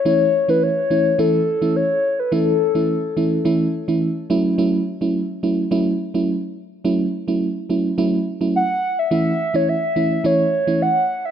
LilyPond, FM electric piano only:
\new Staff \with { instrumentName = "FM electric piano" } { \time 4/4 \key a \major \tempo 4 = 106 <e a cis' e'>8 r16 <e a cis' e'>16 r8 <e a cis' e'>8 <e a cis' e'>8 r16 <e a cis' e'>16 r4 | <e a cis' e'>8 r16 <e a cis' e'>16 r8 <e a cis' e'>8 <e a cis' e'>8 r16 <e a cis' e'>16 r8 <fis a cis' e'>8 | <fis a cis' e'>8 r16 <fis a cis' e'>16 r8 <fis a cis' e'>8 <fis a cis' e'>8 r16 <fis a cis' e'>16 r4 | <fis a cis' e'>8 r16 <fis a cis' e'>16 r8 <fis a cis' e'>8 <fis a cis' e'>8 r16 <fis a cis' e'>16 r4 |
<e a cis' e'>8 r16 <e a cis' e'>16 r8 <e a cis' e'>8 <e a cis' e'>8 r16 <e a cis' e'>16 r4 | }